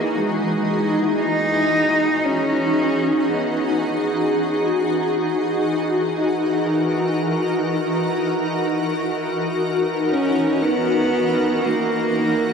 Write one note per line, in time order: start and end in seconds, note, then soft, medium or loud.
0.00 4.33 E3 medium
0.00 0.18 A#3 medium
0.00 12.53 D#4 medium
0.00 12.53 F#4 medium
0.00 5.55 G#4 medium
0.16 1.18 G#3 medium
1.19 2.26 D#4 loud
2.25 3.31 C#4 medium
3.29 4.08 B3 medium
4.34 12.53 E3 medium
5.56 12.53 A#4 medium
10.11 10.64 C#4 medium
10.62 11.67 B3 loud
11.65 12.53 A#3 loud